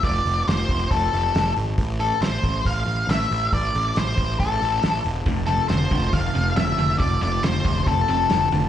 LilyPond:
<<
  \new Staff \with { instrumentName = "Lead electric guitar" } { \time 4/4 \key f \lydian \tempo 4 = 138 d''4 c''4 a'4. r8 | r8 a'8 c''4 f''4 e''4 | d''4 c''4 a'4. r8 | r8 a'8 c''4 f''4 e''4 |
d''8 d''8 c''4 a'4. r8 | }
  \new Staff \with { instrumentName = "Tonewheel organ" } { \time 4/4 \key f \lydian r1 | r1 | r1 | <c' f' a' a''>1~ |
<c' f' a' a''>1 | }
  \new Staff \with { instrumentName = "Overdriven electric guitar" } { \clef bass \time 4/4 \key f \lydian r1 | r1 | r1 | <f, c>8 <f, c>8 <f, d>8 <f, d>8 <f, c>8 <f, c>8 <f, d>8 <f, d>8 |
<f, c>8 <f, c>8 <f, d>8 <f, d>8 <f, c>8 <f, c>8 <f, d>8 <f, d>8 | }
  \new Staff \with { instrumentName = "Overdriven electric guitar" } { \clef bass \time 4/4 \key f \lydian r1 | r1 | r1 | <f, c>8 <f, c>8 <f, d>8 <f, d>8 <f, c>8 <f, c>8 <f, d>8 <f, d>8 |
<f, c>8 <f, c>8 <f, d>8 <f, d>8 <f, c>8 <f, c>8 <f, d>8 <f, d>8 | }
  \new Staff \with { instrumentName = "Picked electric bass" } { \clef bass \time 4/4 \key f \lydian f,,8 f,,8 f,,8 f,,8 f,,8 f,,8 f,,8 gis,,8 | a,,4 a,,8 a,,8 a,,8 a,,8 a,,8 a,,8 | a,,8 a,,8 a,,8 a,,8 a,,8 a,,8 a,,8 e,,8 | f,,4 f,,8 f,,8 f,,8 f,,8 f,,8 f,,8 |
f,,8 f,,8 f,,8 f,,8 f,,8 f,,8 f,,8 f,,8 | }
  \new DrumStaff \with { instrumentName = "Drums" } \drummode { \time 4/4 <hho bd>8 hho8 <hho sn>8 <hho bd>8 <hho bd>8 hho8 <hho sn>8 hho8 | <hho bd>8 hho8 <hho sn>8 <hho bd>8 <hho bd>8 hho8 <hho sn>8 hho8 | <hho bd>8 hho8 <hho sn>8 <hho bd>8 <hho bd>8 hho8 <hho sn>8 hho8 | <hho bd>8 hho8 <hho sn>8 <hho bd>8 <hho bd>8 hho8 <hho sn>8 hho8 |
<hho bd>8 hho8 <hho sn>8 <hho bd>8 <hho bd>8 hho8 <hho sn>8 hho8 | }
>>